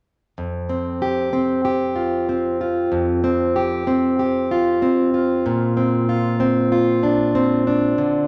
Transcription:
0.38 F2
0.69 C4
1.02 G4
1.33 C4
1.65 G4
1.96 F4
2.29 C4
2.61 F4
2.92 F2
3.24 C4
3.56 G4
3.87 C4
4.19 G4
4.51 F4
4.82 C4
5.14 F4
5.46 A#2
5.77 C4
6.09 F4
6.40 C4
6.72 F4
7.03 D4
7.35 C4
7.67 D4
7.98 D3

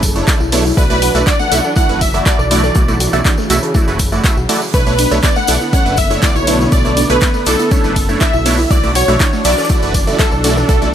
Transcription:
Already playing: F#1 C#3 D3 A3 A4
0.02 kick, open hi-hat, tambourine, shaker
0.16 A3 D4 E4 C#5 E5, tambourine
0.27 A3 D4 E4 D5, kick, snare, clap, tambourine, shaker
0.40 B1 E4 E5, tambourine
0.52 A3 B3 D4 E4 B4 C#5, open hi-hat, tambourine
0.65 E4 E5, tambourine
0.77 B1 E3 F#3 A3 D4 E4 F#4 B4 D5, kick, tambourine, shaker
0.90 A3 E4 F#4 A4 B4 D5, tambourine
1.02 F#4 F#5, open hi-hat, tambourine, shaker
1.15 B1 A3 E4 F#4 D5 E5 E6, tambourine
1.27 A3 D4 E4 F#4 D5, kick, snare, clap, tambourine, shaker
1.39 A3 A4 F#5, snare, tambourine
1.52 B1 A3 E4 F#4 E5, open hi-hat, tambourine, shaker
1.64 A4 A5, tambourine
1.75 A3 E4 F#4 D5 E5 F#5, kick, tambourine, shaker
1.89 F#1 A3 E4 F#4 B4, tambourine
2.01 E5, kick, open hi-hat, tambourine, shaker
2.13 A3 E4 F#4 A4 D5 A5, closed hi-hat, tambourine
2.26 A3 E4 F#4 D5 E5, kick, snare, clap, tambourine, shaker
2.39 B1 A4 A5, tambourine
2.51 A3 D4 E4 F#4 D5, open hi-hat, tambourine, shaker
2.63 A4 A5, snare, tambourine
2.75 B1 C#3 A3 E4 F#4 D5, kick, tambourine, shaker
2.88 A3 E4 F#4 A4 D5, tambourine
3.00 F#4 F#5, open hi-hat, tambourine, shaker
3.13 B1 A3 E4 F#4 D5 E5 E6, closed hi-hat, tambourine
3.25 A3 D4 E4 F#4 D5, kick, snare, clap, tambourine, shaker
3.38 A3 A4, snare, tambourine
3.50 B1 A3 E4 F#4 E5, open hi-hat, tambourine, shaker
3.62 A4 A5, closed hi-hat, tambourine
3.74 A3 E4 F#4 D5 E5, kick, tambourine, shaker
3.87 F#1 A3 E4 F#4 B4, snare, tambourine
3.99 kick, open hi-hat, tambourine, shaker
4.12 A3 E4 F#4 D5 E5, tambourine
4.24 A3 E4 F#4 E5, kick, snare, clap, tambourine, shaker
4.37 B1 F#4 F#5, tambourine
4.49 A3 E4 F#4 A4 D5, open hi-hat, tambourine
4.62 tambourine
4.74 B1 D3 A3 B3 D4 E4 B4 C#5, kick, ride, tambourine, shaker
4.86 A3 D4 E4 A4 B4 C#5, tambourine
4.98 D4 D5, open hi-hat, ride, tambourine, shaker
5.11 B1 A3 D4 E4 A4 C#5 A5, tambourine
5.23 A3 B3 D4 E4 B4 C#5 D5, kick, snare, clap, ride, tambourine, shaker
5.36 A3 A4 F#5, snare, tambourine
5.47 B1 A3 D4 E4 D5, open hi-hat, ride, tambourine, shaker
5.61 E4 E5, tambourine
5.73 A3 C#4 D4 E4 C#5 F#5, kick, ride, tambourine, shaker
5.86 F#1 A3 D4 E4 B4, tambourine
5.97 E5, kick, open hi-hat, ride, tambourine, shaker
6.10 A3 D4 E4 C#5 E5, closed hi-hat, tambourine
6.22 A3 D4 E4 D5 E5, kick, snare, clap, ride, tambourine, shaker
6.35 B1 E4 C#5 E5, tambourine
6.47 A3 B3 D4 E4 B4 C#5, open hi-hat, ride, tambourine, shaker
6.60 E4 E5, snare, tambourine
6.72 B1 A3 D4 E4 C#5 D5, kick, ride, tambourine, shaker
6.85 A3 D4 E4 A4 C#5, tambourine
6.97 D4 D5, open hi-hat, ride, tambourine, shaker
7.09 B1 A3 D4 E4 A4 B4 C#5 A5, closed hi-hat, tambourine
7.21 A3 B3 D4 E4 B4 C#5, kick, snare, clap, ride, tambourine, shaker
7.34 A3 A4, snare, tambourine
7.46 B1 A3 D4 E4 A4 D5, open hi-hat, ride, tambourine, shaker
7.59 E4 E5, closed hi-hat, tambourine
7.71 A3 C#4 D4 E4 C#5, kick, ride, tambourine, shaker
7.84 F#1 A3 D4 E4 B4, snare, tambourine
7.96 kick, open hi-hat, ride, tambourine, shaker
8.09 A3 D4 E4 C#5 E5, tambourine
8.20 A3 D4 E4 D5 E5, kick, snare, clap, ride, tambourine, shaker
8.33 B1 E4 E5, tambourine
8.45 A3 B3 D4 E4 B4 C#5, open hi-hat, ride, tambourine
8.59 E4 E5, tambourine
8.71 B1 E3 F#3 A3 D4 E4 F#4 D5, kick, ride, tambourine, shaker
8.83 A3 E4 F#4 A4 D5, tambourine
8.95 F#4 C#5 F#5, open hi-hat, ride, tambourine, shaker
9.08 B1 A3 E4 F#4 D5 E5 E6, tambourine
9.20 A3 D4 E4 F#4 D5, kick, snare, clap, ride, tambourine, shaker
9.33 A3 A4, snare, tambourine
9.45 B1 A3 E4 F#4 D5 E5, snare, open hi-hat, ride, tambourine, shaker
9.51 snare, shaker
9.58 A4 A5, snare, tambourine, shaker
9.63 snare, shaker
9.69 A3 E4 F#4 D5 E5, kick, ride, tambourine, shaker
9.82 F#1 A3 E4 F#4 B4, tambourine
9.94 kick, open hi-hat, ride, tambourine
10.07 A3 E4 F#4 A4 D5 A5, tambourine
10.19 A3 E4 F#4 A4 E5 A5, kick, snare, clap, ride, tambourine, shaker
10.32 B1 A4 A5, tambourine
10.44 A3 D4 E4 F#4 D5, open hi-hat, ride, tambourine, shaker
10.57 A4 A5, snare, tambourine
10.69 B1 A3 E4 F#4 A4 D5, kick, ride, tambourine, shaker
10.82 A3 E4 F#4 A4 D5, tambourine

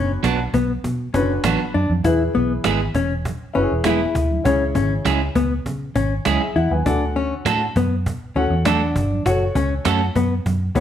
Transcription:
Already playing: F#1 B2 D3 C#4 F#4 B4
0.23 B1 F#3 B3 D4 F#4, cajon slap, high conga
0.54 B1 B3, cajon bass, low conga
0.84 B2, cajon bass, muted conga
1.14 F#1 D3 C#4 F#4 B4, cajon bass
1.44 A1 F#3 B3 D4 F#4, cajon slap, high conga
1.74 F#2 D4, cajon slap
1.90 F2, high conga
2.04 E2 E3 E4 G#4 B4, cajon bass, muted conga
2.33 B1 B3, cajon slap, muted conga
2.64 G#1 G#3 B3 E4 G#4, cajon slap, high conga
2.94 E1 C#4, cajon bass, cajon slap, low conga
3.10 cajon slap
3.25 cajon bass, muted conga
3.54 F#1 C#4 E4 F#4 B4, cajon slap
3.61 G#4
3.71 E1
3.84 G#3 B3 E4 G#4, cajon slap, high conga
4.15 D2, cajon bass
4.31 high conga
4.44 C#2 C#3 C#4 E4 G#4 C#5, cajon bass, muted conga
4.74 G#1 C#4, cajon bass, cajon slap, muted conga
5.05 C#2 G#3 C#4 E4 G#4, cajon slap, high conga
5.35 C#2 B3, cajon bass, low conga
5.66 C#3, cajon bass, muted conga
5.95 G#1 C#4, cajon bass
6.25 C#2 G#3 C#4 E4 G#4, cajon slap, high conga
6.40 G#4 E5
6.55 E2 E4 F#5, cajon slap
6.71 D#2 B4 G#5, high conga
6.85 D2 D3 D4 F#4 A4 F#5, cajon bass, muted conga
7.16 C#4, cajon slap, muted conga
7.45 A2 A3 D4 F#4 A4, cajon slap, high conga
7.76 F#2 B3, cajon bass, low conga
8.06 cajon bass, muted conga
8.35 D2 C#4 F#4 A4 F#5, cajon slap
8.50 E2
8.65 A3 D4 F#4 A4, cajon slap, high conga
8.96 G1, cajon bass
9.11 high conga
9.25 F#1 F#4 A4 C#5, cajon bass, muted conga
9.55 C#2 C#4, cajon bass, cajon slap
9.85 F#2 A3 C#4 F#4 A4, cajon slap, high conga
10.15 F#2 B3, cajon bass, low conga
10.46 F#2, cajon bass, muted conga
10.75 C#2 B3 F#4 A4 C#5, cajon bass

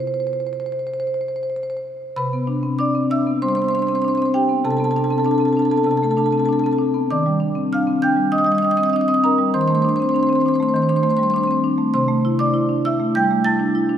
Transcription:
Already playing: C3 B3 E4
0.00 C5
0.07 C5
0.14 C5
0.20 C5
0.27 C5
0.33 C5
0.40 C5
0.47 C5
0.53 C5
0.60 C5
0.66 C5
0.72 C5
0.79 C5
0.87 C5
0.94 C5
1.00 C5
1.07 C5
1.14 C5
1.21 C5
1.28 C5
1.36 C5
1.43 C5
1.50 C5
1.56 C5
1.63 C5
1.70 C5
1.77 C5
2.16 C3 B4 B5
2.33 B3
2.47 D4
2.63 C4
2.79 D4 D5 D6
2.95 C4
3.11 D4 E5 E6
3.27 B3
3.42 G3 C5 C6
3.48 C5 C6
3.55 B3 C5 C6
3.62 C5 C6
3.68 C5 C6
3.74 D4 C6
3.79 C5 C6
3.87 C4 C5 C6
3.95 C5 C6
4.02 D4 C5 C6
4.08 C5 C6
4.15 C4 C5 C6
4.22 C5 C6
4.34 D4 G4 G5
4.49 B3
4.64 C3 A4 A5
4.71 A4 A5
4.77 B3 A4 A5
4.84 A4 A5
4.91 A4 A5
4.96 D4 A4 A5
5.04 A4 A5
5.10 C4 A4 A5
5.18 A4 A5
5.25 D4 A4 A5
5.31 A4 A5
5.38 C4 A4 A5
5.45 A4 A5
5.53 A4 A5
5.57 D4 A5
5.62 A4 A5
5.70 B3 A4 A5
5.76 A4 A5
5.83 C3 A4 A5
5.90 A4 A5
5.97 A4 A5
6.03 A3 A4 A5
6.11 A4 A5
6.17 D4 A4 A5
6.24 A4 A5
6.31 C4 A4 A5
6.38 A4 A5
6.45 D4 A4 A5
6.52 A4 A5
6.59 A4 A5
6.64 C4 A4 A5
6.72 A4 A5
6.78 D4
6.94 B3
7.11 D#3 D5 D6
7.26 G3
7.40 D4
7.55 C4
7.73 D4 F5 F6
7.87 C4
8.02 D4 G5 G6
8.16 G3
8.32 D4 D#5 D#6
8.38 D#5 D#6
8.44 G3 D#5 D#6
8.52 D#5 D#6
8.58 D#6
8.62 D4 D#5 D#6
8.70 D#5 D#6
8.77 C4 D#5 D#6
8.83 D#5 D#6
8.90 D4 D#5 D#6
8.96 D#6
9.01 D#5 D#6
9.08 C4 D#5 D#6
9.14 D#6
9.23 D4 A#4 A#5
9.38 G3
9.54 D#3 C5 C6
9.61 C5 C6
9.68 A3 C5 C6
9.75 C5 C6
9.82 D4 C5 C6
9.89 C5 C6
9.96 C5 C6
10.00 C4 C5 C6
10.09 C5 C6
10.15 D4 C6
10.19 C5 C6
10.27 C4 C5 C6
10.33 C5 C6
10.40 C5 C6
10.46 D4 C5 C6
10.54 C5 C6
10.60 A3 C5 C6
10.69 C5 C6
10.74 D#3 C5 C6
10.82 C5 C6
10.89 D4 C5 C6
10.96 C5 C6
11.03 A3 C5 C6
11.10 C5 C6
11.17 G3 C5 C6
11.23 C5 C6
11.30 D4 C5 C6
11.36 C5 C6
11.43 C5 C6
11.48 C4 C6
11.52 C5
11.64 D4
11.78 A3
11.94 C3 C5 C6
12.08 A3
12.25 E4
12.39 D4 D5 D6
12.54 E4
12.69 D4
12.85 E4 E5 E6
12.99 A3
13.15 G3 G5 G6
13.31 A3
13.44 E4 A5 A6
13.60 D4
13.75 E4
13.89 D4

